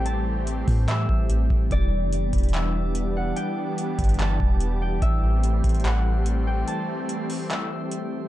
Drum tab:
HH |x-------x---o---x-------x-------|x-------x---xxxxx-------x-------|x-------x---xxxxx-------x-------|x-------x---xxxxx-------x-------|
CP |----------------x---------------|----------------x---------------|----------------x---------------|----------------x---------------|
BD |------------o-------o-------o---|o-----------o-------------------|------------o-------o-----------|o-----------o-------------------|

HH |x-------x---o---x-------x-------|
CP |----------------x---------------|
BD |--------------------------------|